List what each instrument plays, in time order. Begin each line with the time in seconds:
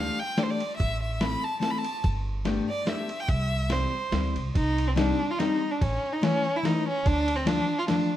Already playing: steel-string acoustic guitar A3 D4 G4 A4, violin F5
0.19 violin G5
0.37 steel-string acoustic guitar A3 D4 G4 A4, violin D5, snare, ride
0.43 violin C5
0.50 violin D5
0.60 ride
0.77 upright bass A1, violin E5, kick, ride
1.02 violin E5
1.21 steel-string acoustic guitar A3 C4 E4 A4, violin B5, snare, ride
1.44 violin A5
1.60 steel-string acoustic guitar A3 C4 E4 A4, violin A5, snare, ride
1.70 violin B5
1.78 violin A5
1.84 ride
2.04 upright bass G1, kick, ride
2.45 steel-string acoustic guitar A3 B3 D4 G4, snare, ride
2.69 violin D5
2.85 steel-string acoustic guitar A3 B3 D4 G4, violin E5, snare, ride
3.09 ride
3.20 violin G5
3.28 upright bass C2, violin E5, kick, ride
3.69 steel-string acoustic guitar G3 C4 E4 G4, violin C5, snare, ride
4.11 upright bass D2, steel-string acoustic guitar G3 C4 E4 G4, snare, ride
4.36 upright bass C2, ride
4.55 upright bass C2, violin D#4, kick, ride
4.78 ride
4.88 violin C4
4.96 steel-string acoustic guitar G3 C4 D4 D#4, violin D4, snare, ride
5.31 violin F4
5.39 steel-string acoustic guitar G3 C4 D4 D#4, violin D#4, snare, ride
5.71 violin D4
5.81 upright bass A1, violin C#4, kick, ride
6.12 violin D#4
6.21 steel-string acoustic guitar E3 A3 C#4 E4, violin C#4, snare, ride
6.56 violin E4
6.63 steel-string acoustic guitar E3 A3 C#4 E4, violin D#4, snare, ride
6.88 violin C#4
7.06 upright bass D2, violin D4, kick, ride
7.28 ride
7.36 violin C4
7.45 steel-string acoustic guitar F3 A3 D4 F4, violin D4, snare, ride
7.79 violin F4
7.88 steel-string acoustic guitar F3 A3 D4 F4, violin D4, snare, ride